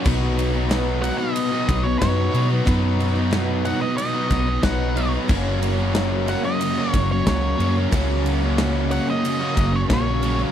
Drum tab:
CC |x-------|--------|x-------|--------|
RD |-xxxxxxx|xxxxxxxx|-xxxxxxx|xxxxxxxx|
SD |--o---o-|--o--oo-|--o--oo-|--o--oo-|
BD |o----oo-|o----oo-|o----oo-|o----oo-|